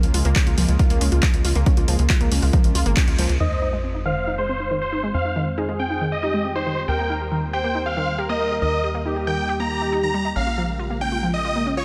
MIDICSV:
0, 0, Header, 1, 7, 480
1, 0, Start_track
1, 0, Key_signature, -4, "minor"
1, 0, Tempo, 434783
1, 1837, Time_signature, 4, 2, 24, 8
1, 13081, End_track
2, 0, Start_track
2, 0, Title_t, "Supersaw synth"
2, 0, Program_c, 0, 81
2, 3756, Note_on_c, 0, 75, 103
2, 4035, Note_off_c, 0, 75, 0
2, 4477, Note_on_c, 0, 77, 92
2, 4755, Note_off_c, 0, 77, 0
2, 4837, Note_on_c, 0, 72, 100
2, 5208, Note_off_c, 0, 72, 0
2, 5317, Note_on_c, 0, 72, 95
2, 5595, Note_off_c, 0, 72, 0
2, 5676, Note_on_c, 0, 77, 101
2, 5955, Note_off_c, 0, 77, 0
2, 6397, Note_on_c, 0, 79, 93
2, 6675, Note_off_c, 0, 79, 0
2, 6756, Note_on_c, 0, 75, 96
2, 7128, Note_off_c, 0, 75, 0
2, 7236, Note_on_c, 0, 72, 94
2, 7515, Note_off_c, 0, 72, 0
2, 7596, Note_on_c, 0, 79, 98
2, 7875, Note_off_c, 0, 79, 0
2, 8317, Note_on_c, 0, 79, 90
2, 8595, Note_off_c, 0, 79, 0
2, 8676, Note_on_c, 0, 77, 98
2, 9047, Note_off_c, 0, 77, 0
2, 9156, Note_on_c, 0, 75, 90
2, 9435, Note_off_c, 0, 75, 0
2, 9516, Note_on_c, 0, 75, 103
2, 9795, Note_off_c, 0, 75, 0
2, 10236, Note_on_c, 0, 79, 94
2, 10514, Note_off_c, 0, 79, 0
2, 10596, Note_on_c, 0, 82, 97
2, 10967, Note_off_c, 0, 82, 0
2, 11076, Note_on_c, 0, 82, 89
2, 11355, Note_off_c, 0, 82, 0
2, 11436, Note_on_c, 0, 77, 101
2, 11715, Note_off_c, 0, 77, 0
2, 12157, Note_on_c, 0, 79, 97
2, 12435, Note_off_c, 0, 79, 0
2, 12516, Note_on_c, 0, 75, 96
2, 12887, Note_off_c, 0, 75, 0
2, 12997, Note_on_c, 0, 73, 89
2, 13081, Note_off_c, 0, 73, 0
2, 13081, End_track
3, 0, Start_track
3, 0, Title_t, "Soft synth lead"
3, 0, Program_c, 1, 80
3, 3756, Note_on_c, 1, 72, 100
3, 4380, Note_off_c, 1, 72, 0
3, 4476, Note_on_c, 1, 72, 100
3, 5101, Note_off_c, 1, 72, 0
3, 5197, Note_on_c, 1, 72, 105
3, 6061, Note_off_c, 1, 72, 0
3, 6156, Note_on_c, 1, 68, 99
3, 6781, Note_off_c, 1, 68, 0
3, 6876, Note_on_c, 1, 67, 96
3, 7500, Note_off_c, 1, 67, 0
3, 7596, Note_on_c, 1, 70, 102
3, 8220, Note_off_c, 1, 70, 0
3, 8316, Note_on_c, 1, 72, 99
3, 8940, Note_off_c, 1, 72, 0
3, 9036, Note_on_c, 1, 70, 100
3, 9900, Note_off_c, 1, 70, 0
3, 9996, Note_on_c, 1, 67, 97
3, 10620, Note_off_c, 1, 67, 0
3, 10716, Note_on_c, 1, 67, 100
3, 11340, Note_off_c, 1, 67, 0
3, 13081, End_track
4, 0, Start_track
4, 0, Title_t, "Synth arpeggio sound"
4, 0, Program_c, 2, 84
4, 156, Note_on_c, 2, 65, 96
4, 197, Note_off_c, 2, 65, 0
4, 276, Note_on_c, 2, 58, 104
4, 344, Note_off_c, 2, 58, 0
4, 396, Note_on_c, 2, 61, 85
4, 498, Note_off_c, 2, 61, 0
4, 516, Note_on_c, 2, 65, 79
4, 557, Note_off_c, 2, 65, 0
4, 636, Note_on_c, 2, 53, 101
4, 704, Note_off_c, 2, 53, 0
4, 876, Note_on_c, 2, 65, 103
4, 917, Note_off_c, 2, 65, 0
4, 996, Note_on_c, 2, 58, 103
4, 1064, Note_off_c, 2, 58, 0
4, 1116, Note_on_c, 2, 61, 78
4, 1218, Note_off_c, 2, 61, 0
4, 1236, Note_on_c, 2, 65, 73
4, 1277, Note_off_c, 2, 65, 0
4, 1356, Note_on_c, 2, 53, 103
4, 1424, Note_off_c, 2, 53, 0
4, 1596, Note_on_c, 2, 65, 106
4, 1637, Note_off_c, 2, 65, 0
4, 1716, Note_on_c, 2, 58, 104
4, 1784, Note_off_c, 2, 58, 0
4, 1836, Note_on_c, 2, 61, 86
4, 1938, Note_off_c, 2, 61, 0
4, 1956, Note_on_c, 2, 65, 77
4, 1997, Note_off_c, 2, 65, 0
4, 2076, Note_on_c, 2, 53, 99
4, 2144, Note_off_c, 2, 53, 0
4, 2316, Note_on_c, 2, 65, 105
4, 2357, Note_off_c, 2, 65, 0
4, 2436, Note_on_c, 2, 58, 99
4, 2504, Note_off_c, 2, 58, 0
4, 2556, Note_on_c, 2, 61, 80
4, 2658, Note_off_c, 2, 61, 0
4, 2676, Note_on_c, 2, 65, 78
4, 2717, Note_off_c, 2, 65, 0
4, 2796, Note_on_c, 2, 53, 102
4, 2864, Note_off_c, 2, 53, 0
4, 3036, Note_on_c, 2, 65, 105
4, 3077, Note_off_c, 2, 65, 0
4, 3156, Note_on_c, 2, 58, 98
4, 3224, Note_off_c, 2, 58, 0
4, 3276, Note_on_c, 2, 61, 84
4, 3378, Note_off_c, 2, 61, 0
4, 3397, Note_on_c, 2, 65, 80
4, 3437, Note_off_c, 2, 65, 0
4, 3517, Note_on_c, 2, 53, 103
4, 3584, Note_off_c, 2, 53, 0
4, 3756, Note_on_c, 2, 51, 100
4, 3824, Note_off_c, 2, 51, 0
4, 3996, Note_on_c, 2, 63, 97
4, 4037, Note_off_c, 2, 63, 0
4, 4116, Note_on_c, 2, 56, 98
4, 4184, Note_off_c, 2, 56, 0
4, 4236, Note_on_c, 2, 60, 78
4, 4338, Note_off_c, 2, 60, 0
4, 4356, Note_on_c, 2, 63, 75
4, 4397, Note_off_c, 2, 63, 0
4, 4476, Note_on_c, 2, 51, 102
4, 4544, Note_off_c, 2, 51, 0
4, 4717, Note_on_c, 2, 63, 95
4, 4757, Note_off_c, 2, 63, 0
4, 4837, Note_on_c, 2, 56, 99
4, 4904, Note_off_c, 2, 56, 0
4, 4957, Note_on_c, 2, 60, 77
4, 5059, Note_off_c, 2, 60, 0
4, 5077, Note_on_c, 2, 63, 73
4, 5117, Note_off_c, 2, 63, 0
4, 5197, Note_on_c, 2, 51, 102
4, 5265, Note_off_c, 2, 51, 0
4, 5437, Note_on_c, 2, 63, 98
4, 5477, Note_off_c, 2, 63, 0
4, 5557, Note_on_c, 2, 56, 100
4, 5625, Note_off_c, 2, 56, 0
4, 5677, Note_on_c, 2, 60, 80
4, 5779, Note_off_c, 2, 60, 0
4, 5797, Note_on_c, 2, 63, 76
4, 5838, Note_off_c, 2, 63, 0
4, 5917, Note_on_c, 2, 51, 100
4, 5985, Note_off_c, 2, 51, 0
4, 6157, Note_on_c, 2, 63, 98
4, 6197, Note_off_c, 2, 63, 0
4, 6277, Note_on_c, 2, 56, 98
4, 6345, Note_off_c, 2, 56, 0
4, 6397, Note_on_c, 2, 60, 75
4, 6498, Note_off_c, 2, 60, 0
4, 6517, Note_on_c, 2, 63, 77
4, 6557, Note_off_c, 2, 63, 0
4, 6636, Note_on_c, 2, 51, 99
4, 6704, Note_off_c, 2, 51, 0
4, 6877, Note_on_c, 2, 63, 101
4, 6917, Note_off_c, 2, 63, 0
4, 6996, Note_on_c, 2, 56, 96
4, 7064, Note_off_c, 2, 56, 0
4, 7117, Note_on_c, 2, 60, 84
4, 7218, Note_off_c, 2, 60, 0
4, 7237, Note_on_c, 2, 63, 73
4, 7277, Note_off_c, 2, 63, 0
4, 7357, Note_on_c, 2, 51, 103
4, 7424, Note_off_c, 2, 51, 0
4, 7596, Note_on_c, 2, 67, 100
4, 7637, Note_off_c, 2, 67, 0
4, 7716, Note_on_c, 2, 58, 104
4, 7784, Note_off_c, 2, 58, 0
4, 7836, Note_on_c, 2, 63, 73
4, 7938, Note_off_c, 2, 63, 0
4, 7957, Note_on_c, 2, 67, 74
4, 7997, Note_off_c, 2, 67, 0
4, 8076, Note_on_c, 2, 51, 100
4, 8144, Note_off_c, 2, 51, 0
4, 8316, Note_on_c, 2, 67, 103
4, 8357, Note_off_c, 2, 67, 0
4, 8436, Note_on_c, 2, 58, 101
4, 8504, Note_off_c, 2, 58, 0
4, 8556, Note_on_c, 2, 63, 81
4, 8658, Note_off_c, 2, 63, 0
4, 8676, Note_on_c, 2, 67, 78
4, 8717, Note_off_c, 2, 67, 0
4, 8796, Note_on_c, 2, 51, 100
4, 8864, Note_off_c, 2, 51, 0
4, 9036, Note_on_c, 2, 67, 100
4, 9077, Note_off_c, 2, 67, 0
4, 9156, Note_on_c, 2, 58, 99
4, 9224, Note_off_c, 2, 58, 0
4, 9276, Note_on_c, 2, 63, 78
4, 9378, Note_off_c, 2, 63, 0
4, 9396, Note_on_c, 2, 67, 76
4, 9437, Note_off_c, 2, 67, 0
4, 9516, Note_on_c, 2, 51, 97
4, 9584, Note_off_c, 2, 51, 0
4, 9756, Note_on_c, 2, 67, 97
4, 9797, Note_off_c, 2, 67, 0
4, 9876, Note_on_c, 2, 58, 102
4, 9944, Note_off_c, 2, 58, 0
4, 9996, Note_on_c, 2, 63, 79
4, 10098, Note_off_c, 2, 63, 0
4, 10116, Note_on_c, 2, 67, 73
4, 10157, Note_off_c, 2, 67, 0
4, 10236, Note_on_c, 2, 51, 96
4, 10304, Note_off_c, 2, 51, 0
4, 10477, Note_on_c, 2, 67, 102
4, 10517, Note_off_c, 2, 67, 0
4, 10597, Note_on_c, 2, 58, 99
4, 10665, Note_off_c, 2, 58, 0
4, 10717, Note_on_c, 2, 67, 73
4, 10784, Note_off_c, 2, 67, 0
4, 10836, Note_on_c, 2, 63, 71
4, 10904, Note_off_c, 2, 63, 0
4, 10957, Note_on_c, 2, 63, 101
4, 11024, Note_off_c, 2, 63, 0
4, 11077, Note_on_c, 2, 51, 74
4, 11144, Note_off_c, 2, 51, 0
4, 11197, Note_on_c, 2, 55, 104
4, 11264, Note_off_c, 2, 55, 0
4, 11317, Note_on_c, 2, 75, 77
4, 11357, Note_off_c, 2, 75, 0
4, 11437, Note_on_c, 2, 61, 82
4, 11538, Note_off_c, 2, 61, 0
4, 11557, Note_on_c, 2, 65, 75
4, 11597, Note_off_c, 2, 65, 0
4, 11676, Note_on_c, 2, 53, 101
4, 11744, Note_off_c, 2, 53, 0
4, 11916, Note_on_c, 2, 65, 99
4, 11957, Note_off_c, 2, 65, 0
4, 12037, Note_on_c, 2, 58, 100
4, 12104, Note_off_c, 2, 58, 0
4, 12157, Note_on_c, 2, 61, 76
4, 12258, Note_off_c, 2, 61, 0
4, 12277, Note_on_c, 2, 65, 79
4, 12317, Note_off_c, 2, 65, 0
4, 12397, Note_on_c, 2, 53, 98
4, 12465, Note_off_c, 2, 53, 0
4, 12637, Note_on_c, 2, 65, 98
4, 12677, Note_off_c, 2, 65, 0
4, 12757, Note_on_c, 2, 58, 97
4, 12825, Note_off_c, 2, 58, 0
4, 12877, Note_on_c, 2, 61, 86
4, 12978, Note_off_c, 2, 61, 0
4, 12997, Note_on_c, 2, 65, 75
4, 13037, Note_off_c, 2, 65, 0
4, 13081, End_track
5, 0, Start_track
5, 0, Title_t, "Analog synth bass"
5, 0, Program_c, 3, 38
5, 36, Note_on_c, 3, 37, 86
5, 132, Note_off_c, 3, 37, 0
5, 156, Note_on_c, 3, 37, 99
5, 252, Note_off_c, 3, 37, 0
5, 276, Note_on_c, 3, 37, 92
5, 372, Note_off_c, 3, 37, 0
5, 516, Note_on_c, 3, 37, 86
5, 612, Note_off_c, 3, 37, 0
5, 636, Note_on_c, 3, 37, 105
5, 732, Note_off_c, 3, 37, 0
5, 756, Note_on_c, 3, 37, 96
5, 852, Note_off_c, 3, 37, 0
5, 996, Note_on_c, 3, 37, 86
5, 1092, Note_off_c, 3, 37, 0
5, 1116, Note_on_c, 3, 37, 101
5, 1212, Note_off_c, 3, 37, 0
5, 1236, Note_on_c, 3, 37, 96
5, 1332, Note_off_c, 3, 37, 0
5, 1476, Note_on_c, 3, 37, 88
5, 1572, Note_off_c, 3, 37, 0
5, 1597, Note_on_c, 3, 37, 97
5, 1692, Note_off_c, 3, 37, 0
5, 1717, Note_on_c, 3, 37, 92
5, 1812, Note_off_c, 3, 37, 0
5, 1957, Note_on_c, 3, 37, 86
5, 2052, Note_off_c, 3, 37, 0
5, 2077, Note_on_c, 3, 37, 100
5, 2172, Note_off_c, 3, 37, 0
5, 2197, Note_on_c, 3, 37, 93
5, 2292, Note_off_c, 3, 37, 0
5, 2436, Note_on_c, 3, 37, 85
5, 2532, Note_off_c, 3, 37, 0
5, 2556, Note_on_c, 3, 37, 103
5, 2652, Note_off_c, 3, 37, 0
5, 2677, Note_on_c, 3, 37, 97
5, 2772, Note_off_c, 3, 37, 0
5, 2917, Note_on_c, 3, 34, 84
5, 3012, Note_off_c, 3, 34, 0
5, 3037, Note_on_c, 3, 37, 99
5, 3132, Note_off_c, 3, 37, 0
5, 3156, Note_on_c, 3, 32, 93
5, 3252, Note_off_c, 3, 32, 0
5, 3396, Note_on_c, 3, 37, 89
5, 3492, Note_off_c, 3, 37, 0
5, 3516, Note_on_c, 3, 37, 98
5, 3612, Note_off_c, 3, 37, 0
5, 3636, Note_on_c, 3, 37, 94
5, 3732, Note_off_c, 3, 37, 0
5, 3756, Note_on_c, 3, 41, 86
5, 5652, Note_off_c, 3, 41, 0
5, 5676, Note_on_c, 3, 41, 88
5, 7572, Note_off_c, 3, 41, 0
5, 7597, Note_on_c, 3, 39, 84
5, 9493, Note_off_c, 3, 39, 0
5, 9516, Note_on_c, 3, 39, 88
5, 11412, Note_off_c, 3, 39, 0
5, 11436, Note_on_c, 3, 34, 89
5, 13081, Note_off_c, 3, 34, 0
5, 13081, End_track
6, 0, Start_track
6, 0, Title_t, "Sub drop"
6, 0, Program_c, 4, 103
6, 3757, Note_on_c, 4, 60, 72
6, 5677, Note_off_c, 4, 60, 0
6, 13081, End_track
7, 0, Start_track
7, 0, Title_t, "Drums"
7, 36, Note_on_c, 9, 42, 68
7, 147, Note_off_c, 9, 42, 0
7, 156, Note_on_c, 9, 46, 100
7, 267, Note_off_c, 9, 46, 0
7, 276, Note_on_c, 9, 42, 69
7, 387, Note_off_c, 9, 42, 0
7, 396, Note_on_c, 9, 36, 112
7, 396, Note_on_c, 9, 39, 119
7, 396, Note_on_c, 9, 42, 73
7, 507, Note_off_c, 9, 36, 0
7, 507, Note_off_c, 9, 39, 0
7, 507, Note_off_c, 9, 42, 0
7, 516, Note_on_c, 9, 42, 66
7, 627, Note_off_c, 9, 42, 0
7, 636, Note_on_c, 9, 46, 98
7, 747, Note_off_c, 9, 46, 0
7, 757, Note_on_c, 9, 42, 72
7, 867, Note_off_c, 9, 42, 0
7, 876, Note_on_c, 9, 36, 107
7, 877, Note_on_c, 9, 42, 65
7, 987, Note_off_c, 9, 36, 0
7, 987, Note_off_c, 9, 42, 0
7, 996, Note_on_c, 9, 42, 66
7, 1107, Note_off_c, 9, 42, 0
7, 1116, Note_on_c, 9, 46, 104
7, 1227, Note_off_c, 9, 46, 0
7, 1236, Note_on_c, 9, 42, 67
7, 1347, Note_off_c, 9, 42, 0
7, 1356, Note_on_c, 9, 36, 120
7, 1356, Note_on_c, 9, 39, 119
7, 1356, Note_on_c, 9, 42, 70
7, 1467, Note_off_c, 9, 36, 0
7, 1467, Note_off_c, 9, 39, 0
7, 1467, Note_off_c, 9, 42, 0
7, 1476, Note_on_c, 9, 42, 66
7, 1586, Note_off_c, 9, 42, 0
7, 1596, Note_on_c, 9, 46, 97
7, 1706, Note_off_c, 9, 46, 0
7, 1716, Note_on_c, 9, 42, 67
7, 1826, Note_off_c, 9, 42, 0
7, 1836, Note_on_c, 9, 42, 68
7, 1837, Note_on_c, 9, 36, 117
7, 1946, Note_off_c, 9, 42, 0
7, 1947, Note_off_c, 9, 36, 0
7, 1956, Note_on_c, 9, 42, 72
7, 2066, Note_off_c, 9, 42, 0
7, 2076, Note_on_c, 9, 46, 100
7, 2186, Note_off_c, 9, 46, 0
7, 2196, Note_on_c, 9, 42, 69
7, 2306, Note_off_c, 9, 42, 0
7, 2316, Note_on_c, 9, 39, 125
7, 2316, Note_on_c, 9, 42, 74
7, 2317, Note_on_c, 9, 36, 112
7, 2426, Note_off_c, 9, 39, 0
7, 2426, Note_off_c, 9, 42, 0
7, 2427, Note_off_c, 9, 36, 0
7, 2436, Note_on_c, 9, 42, 70
7, 2547, Note_off_c, 9, 42, 0
7, 2556, Note_on_c, 9, 46, 104
7, 2667, Note_off_c, 9, 46, 0
7, 2676, Note_on_c, 9, 46, 61
7, 2787, Note_off_c, 9, 46, 0
7, 2796, Note_on_c, 9, 42, 68
7, 2797, Note_on_c, 9, 36, 109
7, 2906, Note_off_c, 9, 42, 0
7, 2907, Note_off_c, 9, 36, 0
7, 2916, Note_on_c, 9, 42, 70
7, 3027, Note_off_c, 9, 42, 0
7, 3037, Note_on_c, 9, 46, 103
7, 3147, Note_off_c, 9, 46, 0
7, 3157, Note_on_c, 9, 42, 69
7, 3267, Note_off_c, 9, 42, 0
7, 3276, Note_on_c, 9, 39, 119
7, 3276, Note_on_c, 9, 42, 73
7, 3277, Note_on_c, 9, 36, 120
7, 3387, Note_off_c, 9, 36, 0
7, 3387, Note_off_c, 9, 39, 0
7, 3387, Note_off_c, 9, 42, 0
7, 3397, Note_on_c, 9, 42, 69
7, 3507, Note_off_c, 9, 42, 0
7, 3516, Note_on_c, 9, 46, 99
7, 3627, Note_off_c, 9, 46, 0
7, 3636, Note_on_c, 9, 42, 67
7, 3747, Note_off_c, 9, 42, 0
7, 13081, End_track
0, 0, End_of_file